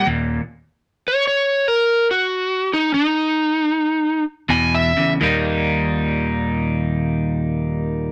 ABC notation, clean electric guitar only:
X:1
M:4/4
L:1/8
Q:"Swing" 1/4=89
K:Ebmix
V:1 name="Clean electric guitar" clef=bass
[E,,B,,] z6 z | z6 [=E,,=B,,] [E,,D,] | [E,,B,,E,G,B,E]8 |]